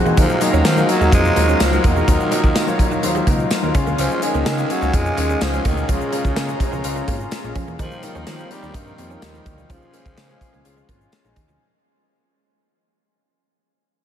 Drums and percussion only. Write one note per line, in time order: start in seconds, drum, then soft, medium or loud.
0.06 shaker soft
0.17 kick loud
0.17 closed hi-hat medium
0.17 shaker medium
0.29 shaker medium
0.41 closed hi-hat medium
0.41 shaker medium
0.53 shaker medium
0.65 snare loud
0.65 closed hi-hat medium
0.65 tambourine medium
0.65 shaker medium
0.77 shaker medium
0.89 closed hi-hat medium
1.01 shaker soft
1.12 kick loud
1.12 closed hi-hat medium
1.12 shaker medium
1.25 shaker medium
1.36 closed hi-hat medium
1.49 shaker medium
1.60 snare loud
1.60 closed hi-hat loud
1.60 tambourine medium
1.60 shaker medium
1.72 shaker soft
1.84 kick loud
1.84 closed hi-hat medium
1.96 shaker soft
2.08 kick loud
2.08 closed hi-hat medium
2.08 shaker medium
2.20 shaker medium
2.32 closed hi-hat medium
2.32 shaker medium
2.44 kick loud
2.44 shaker medium
2.56 snare loud
2.56 closed hi-hat loud
2.56 tambourine medium
2.56 shaker medium
2.68 shaker medium
2.79 kick medium
2.79 closed hi-hat medium
2.79 shaker medium
2.91 shaker soft
3.03 closed hi-hat medium
3.03 shaker medium
3.15 shaker medium
3.27 kick medium
3.27 closed hi-hat medium
3.27 shaker soft
3.39 shaker medium
3.51 snare loud
3.51 closed hi-hat medium
3.51 tambourine medium
3.51 shaker medium
3.63 shaker soft
3.75 kick loud
3.75 closed hi-hat medium
3.75 shaker medium
3.87 shaker soft
3.98 closed hi-hat medium
3.98 shaker medium
4.11 shaker medium
4.22 closed hi-hat medium
4.22 shaker medium
4.34 shaker medium
4.46 snare loud
4.46 closed hi-hat loud
4.46 tambourine medium
4.46 shaker medium
4.58 shaker medium
4.70 closed hi-hat medium
4.82 shaker soft
4.94 kick loud
4.94 closed hi-hat medium
4.94 shaker medium
5.06 shaker medium
5.17 closed hi-hat medium
5.30 shaker medium
5.41 snare loud
5.41 closed hi-hat loud
5.41 tambourine medium
5.41 shaker medium
5.53 shaker soft
5.65 kick loud
5.65 closed hi-hat medium
5.77 shaker soft
5.89 kick loud
5.89 closed hi-hat medium
5.89 shaker medium
6.01 shaker medium
6.13 closed hi-hat medium
6.13 shaker soft
6.25 kick medium
6.25 shaker medium
6.36 snare loud
6.36 closed hi-hat loud
6.36 tambourine medium
6.36 shaker medium
6.49 shaker medium
6.60 kick medium
6.60 closed hi-hat medium
6.72 shaker soft
6.84 closed hi-hat medium
6.84 shaker medium
6.96 shaker medium
7.08 kick medium
7.08 closed hi-hat medium
7.20 shaker medium
7.31 snare loud
7.31 closed hi-hat loud
7.31 tambourine medium
7.31 shaker medium
7.44 shaker soft
7.55 kick loud
7.55 closed hi-hat medium
7.67 shaker soft
7.79 kick loud
7.79 closed hi-hat medium
7.79 shaker medium
7.91 shaker medium
8.03 closed hi-hat medium
8.03 shaker medium
8.15 shaker medium
8.27 snare loud
8.27 closed hi-hat loud
8.27 tambourine medium
8.27 shaker medium
8.39 shaker medium
8.51 closed hi-hat medium
8.63 shaker medium
8.74 kick loud
8.74 closed hi-hat loud
8.74 shaker medium
8.87 shaker medium
8.98 closed hi-hat medium
9.11 shaker medium
9.22 snare loud
9.22 closed hi-hat loud
9.22 tambourine medium
9.22 shaker medium
9.34 shaker soft
9.46 kick loud
9.46 closed hi-hat medium
9.58 shaker soft
9.70 kick loud
9.70 closed hi-hat medium
9.70 shaker medium
9.82 shaker medium
9.94 closed hi-hat medium
9.94 shaker medium
10.06 kick loud
10.06 shaker medium
10.17 snare loud
10.17 closed hi-hat loud
10.17 tambourine medium
10.17 shaker medium
10.30 shaker medium
10.41 kick medium
10.41 closed hi-hat medium
10.41 shaker medium
10.53 shaker soft
10.65 closed hi-hat medium
10.65 shaker medium
10.77 shaker medium
10.89 kick medium
10.89 closed hi-hat medium
10.89 shaker soft
11.01 shaker medium
11.12 snare loud
11.12 closed hi-hat loud
11.12 tambourine medium
11.12 shaker medium
11.25 shaker soft
11.36 kick medium
11.36 closed hi-hat medium
11.36 shaker medium
11.48 shaker soft